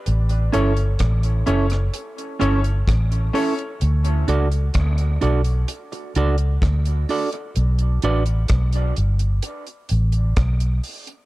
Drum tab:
HH |xxxxxxxxxxxxxxox|xxxxxxxxxxxxxxox|xxxxxxxxxxxxxxox|
SD |----r--r----r---|----r-------r---|----r-------r---|
BD |----o-------o---|----o-------o---|----o-------o---|